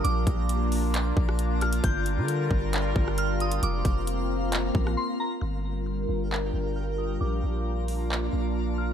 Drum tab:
HH |x-x-x-o-x---x-xx|x-x-x---x---x-xx|x-x-x---x-------|----------------|
CP |--------x-------|--------x-------|--------x-------|--------x-------|
SD |-----------r--r-|-----------r----|-----------r----|----------------|
BD |--o-------o-----|o-----o---o-----|--o-------o-----|----------------|

HH |------o---------|
CP |--------x-------|
SD |----------------|
BD |----------------|